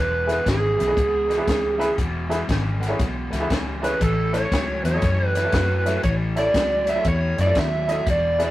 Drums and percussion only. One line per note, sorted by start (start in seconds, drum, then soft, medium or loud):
0.29 snare soft
0.29 closed hi-hat medium
0.46 kick medium
0.46 snare loud
0.46 closed hi-hat medium
0.80 snare soft
0.80 closed hi-hat medium
0.97 kick medium
0.97 closed hi-hat medium
1.31 snare soft
1.31 closed hi-hat medium
1.48 kick medium
1.48 snare loud
1.48 closed hi-hat medium
1.81 snare soft
1.81 closed hi-hat medium
1.98 kick medium
1.98 closed hi-hat medium
2.31 snare soft
2.31 closed hi-hat medium
2.49 kick medium
2.49 snare loud
2.49 closed hi-hat medium
2.83 snare soft
2.83 closed hi-hat medium
2.99 kick medium
2.99 snare soft
2.99 closed hi-hat medium
3.33 snare soft
3.33 closed hi-hat medium
3.50 kick medium
3.50 snare loud
3.50 closed hi-hat medium
3.84 snare soft
3.84 closed hi-hat medium
4.01 kick medium
4.01 closed hi-hat medium
4.34 snare soft
4.34 closed hi-hat medium
4.52 kick medium
4.52 snare loud
4.52 closed hi-hat medium
4.85 snare soft
4.85 closed hi-hat medium
5.02 kick medium
5.02 snare soft
5.02 closed hi-hat medium
5.35 snare soft
5.35 closed hi-hat medium
5.52 kick medium
5.52 snare loud
5.52 closed hi-hat medium
5.86 snare soft
5.86 closed hi-hat medium
6.04 kick medium
6.04 closed hi-hat medium
6.37 snare soft
6.37 closed hi-hat medium
6.54 kick medium
6.54 snare loud
6.54 closed hi-hat medium
6.87 snare soft
6.87 closed hi-hat medium
7.05 kick medium
7.05 closed hi-hat medium
7.38 snare soft
7.38 closed hi-hat medium
7.55 kick medium
7.55 snare loud
7.55 closed hi-hat medium
7.89 snare soft
7.89 closed hi-hat medium
8.07 kick medium
8.07 snare soft
8.07 closed hi-hat medium
8.40 snare soft
8.40 closed hi-hat medium